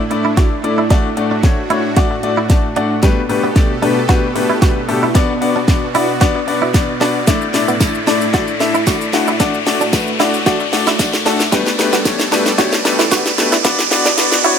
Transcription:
Already playing: A2 A3 D4 E4, riser
0.11 A3 D4 E4 D5, muted clean electric guitar stroke, closed hi-hat
0.25 E4
0.37 A3 D4 E4 F#4 D5, kick, snare, closed hi-hat
0.64 A3 D4 E4 D5, muted clean electric guitar stroke, closed hi-hat
0.78 E4
0.90 A3 D4 F#4 D5, kick, snare, closed hi-hat
1.17 A3 D4 F#4 D5, muted clean electric guitar stroke, closed hi-hat
1.31 D4
1.43 A3 D4 F#4 C#5, kick, snare, closed hi-hat
1.70 A3 D4 E4 F#4 C#5, closed hi-hat
1.96 A3 D4 F#4 D5, kick, snare, closed hi-hat
2.11 muted clean electric guitar stroke
2.23 A3 D4 F#4 D5, closed hi-hat
2.37 E4
2.50 A3 D4 F#4 D5 A5, kick, snare, closed hi-hat
2.76 A3 D4 F#4 D5 F#5, closed hi-hat
3.03 B2 G3 A3 B3 D4 G4 A4 B4, kick, snare, closed hi-hat
3.29 B2 A3 D4 G4 B4, muted clean electric guitar stroke, open hi-hat
3.44 B3
3.55 B2 A3 D4 G4 D5, kick, snare, closed hi-hat
3.82 B2 A3 D4 G4 B4, open hi-hat
4.09 B2 A3 D4 F#4 G4 B4, kick, snare, closed hi-hat
4.35 B2 A3 D4 G4 B4, muted clean electric guitar stroke, open hi-hat
4.50 E4
4.62 B2 A3 D4 F#4 G4 B4, kick, snare, closed hi-hat
4.88 B2 A3 D4 G4 A4, muted clean electric guitar stroke, open hi-hat
5.03 E4
5.15 B3 D4 F#4 D5, kick, snare, closed hi-hat
5.41 B3 D4 F#4 D5, muted clean electric guitar stroke, open hi-hat
5.56 D4
5.68 B3 D4 F#4 D5, kick, snare, closed hi-hat
5.94 B3 D4 E4 F#4 D5, open hi-hat
6.21 B3 D4 F#4 D5, kick, snare, closed hi-hat
6.36 muted clean electric guitar stroke
6.47 B3 D4 F#4 D5, open hi-hat
6.62 E4
6.74 B3 D4 F#4 D5, kick, snare, closed hi-hat
7.00 B3 D4 F#4 D5, snare, open hi-hat
7.27 A2 A3 D4 E4 D5, kick, snare, closed hi-hat, shaker
7.42 shaker
7.54 A3 D4 E4 D5, muted clean electric guitar stroke, snare, open hi-hat, shaker
7.68 B3, shaker
7.80 A3 D4 E4 D5, kick, snare, closed hi-hat, tambourine, shaker
7.95 shaker
8.07 A3 D4 E4 D5, snare, open hi-hat, shaker
8.21 shaker
8.33 A3 D4 E4 F#4 D5, kick, snare, closed hi-hat, shaker
8.48 shaker
8.60 A3 D4 E4 E5, muted clean electric guitar stroke, snare, open hi-hat, shaker
8.74 E4, shaker
8.87 A3 D4 E4 F#4 D5, kick, snare, closed hi-hat, tambourine, shaker
9.01 shaker
9.13 A3 D4 E4 F#4, muted clean electric guitar stroke, snare, open hi-hat, shaker
9.27 E4, shaker
9.40 A3 D4 F#4 D5, kick, snare, closed hi-hat, shaker
9.54 shaker
9.66 A3 D4 F#4 D5, muted clean electric guitar stroke, snare, open hi-hat, shaker
9.81 D4, shaker
9.93 A3 D4 F#4 B4, kick, snare, closed hi-hat, tambourine, shaker
10.07 shaker
10.19 A3 D4 E4 F#4 D5, snare, open hi-hat, shaker
10.34 shaker
10.46 A3 D4 F#4 D5, kick, snare, closed hi-hat, shaker
10.60 muted clean electric guitar stroke, shaker
10.72 A3 D4 F#4 D5, snare, open hi-hat, shaker
10.87 E4, snare, shaker
10.99 A3 D4 F#4 D5, kick, snare, closed hi-hat, tambourine, shaker
11.13 snare, shaker
11.25 A3 D4 F#4 A4, snare, open hi-hat, shaker
11.40 snare, shaker
11.52 B2 G3 A3 D4 G4 A4 B4 D5, kick, snare, closed hi-hat, shaker
11.67 snare, shaker
11.79 B2 A3 D4 G4 B4, muted clean electric guitar stroke, snare, open hi-hat, shaker
11.93 B3, snare, shaker
12.05 B2 A3 D4 G4 C#5, kick, snare, closed hi-hat, tambourine, shaker
12.19 snare, shaker
12.32 B2 A3 D4 G4 B4, snare, open hi-hat, shaker
12.46 snare, shaker
12.58 B2 A3 D4 F#4 G4 C#5, kick, snare, closed hi-hat, shaker
12.72 snare, shaker
12.85 B2 A3 D4 G4 B4, muted clean electric guitar stroke, snare, open hi-hat, shaker
12.99 E4, snare, shaker
13.11 B2 A3 D4 F#4 G4 B4, kick, snare, closed hi-hat, tambourine, shaker
13.26 snare, shaker
13.38 B2 A3 D4 G4 B4, muted clean electric guitar stroke, snare, open hi-hat, shaker
13.52 E4, snare, shaker
13.64 B3 D4 F#4 D5, kick, snare, closed hi-hat, shaker
13.79 snare, shaker
13.91 B3 D4 F#4 D5, muted clean electric guitar stroke, snare, open hi-hat, shaker
14.05 D4, snare, shaker
14.17 B3 D4 F#4 D5, snare, closed hi-hat, tambourine, shaker
14.32 snare, shaker
14.44 B3 D4 E4 F#4 C#5, open hi-hat, shaker

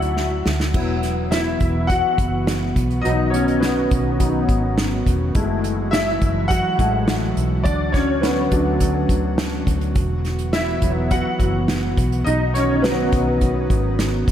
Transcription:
Already playing: D2 F#3 A3 D4 E4 F#4 D5 E5 F#5
0.02 closed hi-hat
0.17 snare
0.46 D2, snare
0.60 snare
0.74 E3 F#3 B3 E4 F#4, kick, crash
1.03 snare, closed hi-hat
1.31 E4 E5, snare, closed hi-hat
1.60 E1, kick, closed hi-hat
1.87 F#4 F#5, kick, closed hi-hat
2.18 F#1, kick, closed hi-hat
2.47 snare, closed hi-hat
2.75 B1 D#3, kick, closed hi-hat
2.90 closed hi-hat
3.01 B1 F#3 B3 D#4 D#5, closed hi-hat
3.30 C#4 C#5, closed hi-hat
3.48 closed hi-hat
3.60 B3 B4, snare, closed hi-hat
3.91 B1, kick, closed hi-hat
4.19 F#3 B3 D#4, kick, closed hi-hat
4.49 G#1, kick, closed hi-hat
4.78 snare, closed hi-hat
5.06 E1, kick, closed hi-hat
5.35 F#1 E3 F#3 G#3 A3 E4, kick, closed hi-hat
5.64 closed hi-hat
5.91 E4 E5, snare, closed hi-hat
6.21 F#1, kick, closed hi-hat
6.48 F#4 F#5, kick, closed hi-hat
6.79 A1 G#3 A3 E4, kick, closed hi-hat
7.08 snare, closed hi-hat
7.37 B1, closed hi-hat
7.64 D2 D3 D4 D5, kick, closed hi-hat
7.92 C#4 C#5, kick, snare, closed hi-hat
8.21 B3 B4, snare, closed hi-hat
8.51 D2 F#3 A3 D4, kick, closed hi-hat
8.80 kick, closed hi-hat
9.09 D2, kick, closed hi-hat
9.38 snare, closed hi-hat
9.67 D2, kick, closed hi-hat
9.81 closed hi-hat
9.95 E1 E3 B3, kick, closed hi-hat
10.25 snare, closed hi-hat
10.39 closed hi-hat
10.53 E4 E5, snare, closed hi-hat
10.82 E1 F#3 B3 E4, kick, closed hi-hat
11.11 F#4 F#5, kick, closed hi-hat
11.39 F#1, kick, closed hi-hat
11.68 snare, closed hi-hat
11.97 B1 D#3 B3, kick, closed hi-hat
12.12 closed hi-hat
12.24 B1 D#4 D#5, closed hi-hat
12.54 C#4 C#5, snare, closed hi-hat
12.82 F#3 B3 D#4 B4, snare, closed hi-hat
13.12 B1, kick, closed hi-hat
13.41 kick, closed hi-hat
13.70 G#1, kick, closed hi-hat
13.99 snare, closed hi-hat
14.28 E1, kick, closed hi-hat

